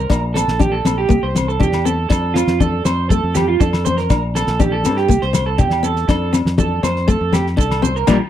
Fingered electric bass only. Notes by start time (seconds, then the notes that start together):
0.10 A#1
0.48 A#1
0.85 A#1
1.10 C2
1.23 C2
1.60 E2
2.10 F2
2.47 F2
2.85 F2
3.23 F2
3.60 F2
4.10 A#1
4.47 A#1
4.84 G2
5.09 C2
5.23 C2
5.59 E2
6.09 F2
6.45 F2
6.83 F2
7.21 F2
7.58 C2
8.08 A#1